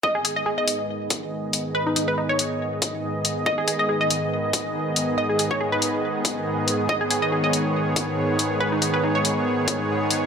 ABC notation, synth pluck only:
X:1
M:4/4
L:1/16
Q:"Swing 16ths" 1/4=140
K:G#m
V:1 name="Synth pluck"
d G G d G d8- d2 z | B D D B D c8- c2 z | d G G d G d8- d2 z | d G G c G B8- B2 z |
d G G d G d8- d2 z | B D D B D c8- c2 z |]